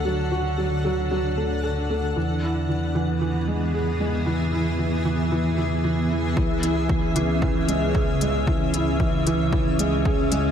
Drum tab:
HH |--------|--------|--------|-x-x-x-x|
BD |--------|--------|--------|o-o-o-o-|

HH |-x-x-x-x|
BD |o-o-o-o-|